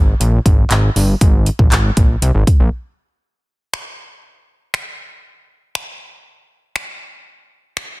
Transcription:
Already playing: G#1
0.20 A#1, closed hi-hat
0.46 G#1, kick, closed hi-hat
0.71 G#1, clap, closed hi-hat
0.96 G1, open hi-hat
1.21 G#1, kick, closed hi-hat
1.46 closed hi-hat
1.59 A#1, kick
1.72 G#1, clap, closed hi-hat
1.97 A#1, kick, closed hi-hat
2.22 C2, closed hi-hat
2.35 G#1
2.47 kick, closed hi-hat
2.60 A#1
3.74 finger snap
4.74 finger snap
5.75 finger snap
6.76 finger snap
7.77 finger snap

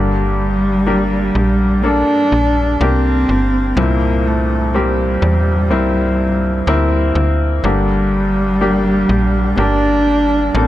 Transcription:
Already playing: G1 G2 D3 G3 A#3 D4 G4 A#4
0.87 A#3 D4 G4
1.35 A#1
1.83 A#3 D4 A4
2.32 A#1
2.81 C2 A#3 C4 D4 G4
3.29 G1
3.77 C2 G2 A#2 A#3 C4 E4
4.27 A3
4.74 G3 A#3 C4 G4
5.22 E2
5.70 C2 A#3 C4 E4
6.67 D2 A#3 C4 E4
7.15 D2
7.64 G1 G2 D3 G3 A#3 D4 G4
8.61 A#3 D4 G4
9.09 A#1
9.57 G1 A#3 D4 G4
10.55 A1 A#3 C4 D4 A4

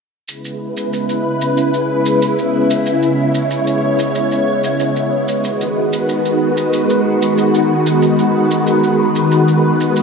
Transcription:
0.28 C#3 G#3 B3 E4 B4, shaker
0.45 shaker
0.77 shaker
0.93 shaker
1.09 shaker
1.41 shaker
1.57 shaker
1.74 shaker
2.06 shaker
2.22 shaker
2.39 shaker
2.71 shaker
2.85 C#5, shaker
3.03 shaker
3.35 shaker
3.51 shaker
3.67 shaker
3.99 shaker
4.15 shaker
4.32 shaker
4.64 shaker
4.80 shaker
4.96 shaker
5.28 shaker
5.44 D#3 F#4 B4, shaker
5.61 shaker
5.93 shaker
6.09 shaker
6.25 shaker
6.57 shaker
6.73 shaker
6.90 shaker
7.22 shaker
7.38 shaker
7.55 shaker
7.87 shaker
8.02 shaker
8.19 shaker
8.51 shaker
8.67 shaker
8.84 shaker
9.16 shaker
9.31 shaker
9.48 shaker
9.80 shaker
9.96 shaker

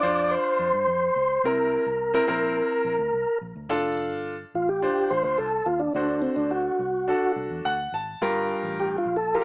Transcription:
Already playing: D5
0.03 F2 D4 F4 C5
0.31 C5
0.59 F2
0.73 G2
0.87 F2
1.16 C#2
1.44 C2 C3 C4 E4 A#4
1.86 C2
2.14 C4 E4 A#4
2.27 A#1 C4 E4 A#4
2.85 A#1
2.99 D2
3.13 C2
3.41 A#1
3.56 D2
3.69 F1 D4 F4 A4
4.11 G1
4.54 A1 F4
4.69 G4
4.82 D4 F4 C5
5.10 A1 C5
5.24 D2 C5
5.38 C2 A4
5.66 D#2 F4
5.79 D4
5.94 D2 D3 D4 F#4 C5
6.22 C4
6.36 D2 D4
6.51 F#4
6.79 C2
7.08 D4 F#4 A4
7.36 C2
7.50 E2
7.65 D2 F#5
7.92 G#1 A5
8.21 G1 G2 F4 G4 A#4
8.63 A1
8.80 G4
8.98 F4
9.05 A#1
9.16 A4
9.35 F4 G4 A4 A#4

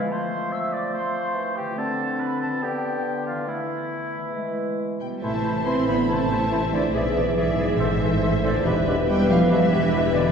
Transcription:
Already playing: E3 F3 G#3 C4 B4 E5
0.02 F4
0.07 A4
0.11 F3 A3 C5 C6
0.52 E5 E6
0.72 D5 D6
0.93 A3 C5 C6
1.35 E3
1.56 D3 G4 G5
1.64 C4
1.69 F4
1.73 C4 A4
1.78 D3 A4 A5
2.20 B4 B5
2.40 D3 A4 A5
2.48 B3
2.53 F4
2.57 B3 B4
2.62 D3 G4 G5
3.26 E3 F4 F5
3.35 B3
3.39 E4
3.43 E3 A3 A4
3.48 E4 E5
4.17 E3
4.22 B3
4.26 E4
4.30 G#4
4.35 E3 G#3
5.00 B2 G3 G5
5.21 A1 A2 C3 E3 A3 E4 C5 E5 A5
5.33 E3
5.44 E3 E4 C5
5.55 C5
5.65 E3 C4 E4 C5 E5 C6
5.77 C5
5.87 D3 E3 B3 E4 A4 C5 B5
5.98 E4
6.09 A2 C3 E3 A3 E4 C5 E5 A5
6.20 E3
6.29 E3 E4 C5
6.41 C5
6.51 E3 E4 C5 E5
6.62 C5
6.73 F2 D3 E3 E4 A4 C5 D5
6.84 E4
6.94 B1 G#2 B2 E3 G#4 D5 E5
7.05 B3
7.16 E3 E4 G#4 D5
7.27 D5
7.37 G#2 E3 G#4 D5 E5
7.48 D5
7.58 E3 G#4 D5
7.69 E4
7.79 A1 A2 E3 A4 C5 E5
7.91 E3
8.01 E3 E4 A4 C5
8.12 C5
8.22 E3 A4 C5 E5
8.34 C5
8.44 F2 D3 E3 A4 C5 D5
8.55 E4
8.65 E1 E2 G2 B2 E3 G4 B4 E5
8.75 B2
8.86 B2 G4 B4
8.97 B4
9.07 B2 G3 G4 B4 E5 G5
9.18 B4
9.29 A2 B2 F3 G4 B4 F5
9.40 B3
9.50 E2 G2 B2 E3 G4 B4 E5
9.61 B2
9.72 B2 G4 B4
9.83 B4
9.93 B2 G4 B4 G5
10.04 B4
10.14 F2 B2 D3 G4 B4 D5
10.25 B3

